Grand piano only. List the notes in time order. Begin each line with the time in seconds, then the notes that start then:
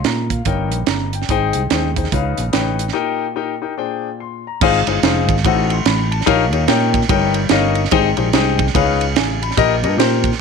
Already playing: A#2
0.06 A#5
0.31 F5
0.46 G2 D#4 A#4 C#5 G5
0.89 A#5
1.15 G5
1.30 G#2 D#4 G#4 C5 G5
1.72 D#4 G#4 C5 G5
1.97 D#4 G#4 C5 G5
2.13 C#3 D#4 B4 C#5 F5
2.53 D#4 B4 C#5 G5
2.93 A#2 D#4 G4 A#4 G5
3.36 D#4 G4 A#4 G5
3.62 D#4 G4 A#4 G5
3.78 A#2 D4 G#4 C5 G5
4.20 C6
4.47 A#5
4.62 G#2 D#4 F4 G#4 C5 F5
4.87 D#4 F4 G#4 C5 F5
5.03 D#4 F4 G#4 C5 F5
5.45 A2 D#4 F#4 A4 C5 F#5
5.71 C6
5.86 B5
6.11 A5
6.26 A#2 D#4 G4 A#4 C#5 F5
6.53 D#4 G4 A#4 C#5 F5
6.68 D#4 G4 A#4 C#5 G5
7.09 G2 D#4 G4 A#4 C#5 G5
7.34 G5
7.51 D#4 G4 A#4 C#5 D#5 F5
7.91 G#2 D#4 G4 G#4 C5 G5
8.17 D#4 G4 G#4 C5 G5
8.34 D#4 G4 G#4 C5 G5
8.74 C#3 D#4 G#4 B4 C#5 F5
9.17 G#5
9.42 B5
9.57 A#2 G4 A#4 D#5
9.84 G4 A#4 D#5
9.98 G4 A#4 C5